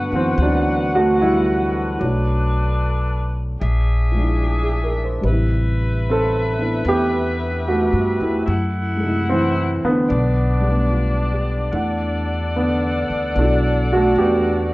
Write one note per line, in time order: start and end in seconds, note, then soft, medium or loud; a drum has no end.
0.00 0.09 D3 medium
0.00 0.95 A3 soft
0.00 0.11 B3 medium
0.00 0.41 D4 soft
0.00 0.94 F#4 soft
0.00 1.96 F#4 medium
0.00 2.00 B4 soft
0.00 3.43 B4 medium
0.00 1.96 F#5 medium
0.09 0.36 F#2 medium
0.09 1.99 D3 soft
0.09 2.01 B3 soft
0.15 0.38 E3 medium
0.15 0.40 C4 medium
0.38 1.96 D2 medium
0.42 0.91 F#3 medium
0.42 0.91 D4 medium
0.95 1.19 A3 medium
0.95 1.18 F#4 medium
1.22 1.98 G3 medium
1.22 1.97 E4 medium
1.98 3.58 B1 medium
1.98 2.03 F#3 soft
1.98 3.61 A3 soft
1.98 3.43 D4 medium
1.98 3.43 A4 medium
1.98 3.62 C#5 soft
2.02 3.60 F#3 medium
2.02 3.63 D4 soft
3.60 5.19 A#1 medium
3.60 5.21 D4 medium
3.60 5.21 G#4 medium
3.60 5.21 E5 medium
4.12 5.21 F3 soft
4.12 5.23 G#3 soft
4.19 5.25 D4 soft
4.19 5.26 E4 soft
4.43 4.81 F4 soft
4.63 4.98 G#4 soft
4.84 5.08 A#4 soft
5.05 5.32 C5 soft
5.21 6.81 A1 medium
5.21 8.45 G3 soft
5.21 8.47 B4 medium
5.21 8.44 E5 medium
5.25 8.49 C3 soft
5.25 8.44 B4 medium
5.32 6.60 E4 medium
6.09 6.84 C4 medium
6.09 6.84 A4 medium
6.59 6.86 B3 soft
6.59 8.47 D4 soft
6.59 8.20 E4 soft
6.85 7.88 E2 medium
6.85 7.63 B3 medium
6.85 7.63 G4 medium
7.68 8.19 A3 medium
7.68 8.18 F#4 medium
7.93 8.18 G2 medium
8.20 8.45 E2 medium
8.20 8.98 A3 soft
8.20 8.98 E4 medium
8.45 9.79 F#2 medium
8.45 9.91 E4 medium
8.45 9.91 F#5 medium
8.96 10.06 G#3 soft
8.96 10.08 A3 soft
9.03 10.10 C3 soft
9.03 10.12 E4 soft
9.29 9.81 E3 medium
9.29 9.80 C4 medium
9.84 11.45 D3 medium
9.84 10.70 B3 medium
9.84 muted upright bass stroke soft
10.08 11.70 B1 medium
10.08 11.71 D4 medium
10.08 14.73 D5 medium
10.61 11.71 G3 soft
10.61 11.72 A3 soft
10.68 11.76 B3 soft
10.68 11.72 D4 soft
10.91 11.56 F4 soft
11.33 11.90 G4 soft
11.71 13.06 E2 medium
11.71 14.73 E3 soft
11.71 13.94 A3 soft
11.71 14.73 D4 medium
11.71 13.38 D4 soft
11.71 14.73 A4 medium
11.71 14.73 F#5 medium
11.71 14.73 F#5 soft
12.57 13.34 D3 medium
12.57 13.34 B3 medium
13.10 13.35 D2 medium
13.36 14.13 B1 medium
13.36 14.19 B3 soft
13.36 13.89 D4 medium
13.36 14.73 E4 soft
13.36 14.73 A4 soft
13.42 13.90 F#3 medium
13.93 14.18 A3 medium
13.93 14.19 F#4 medium
14.16 14.73 E2 medium
14.16 14.71 G4 medium
14.21 14.70 B3 medium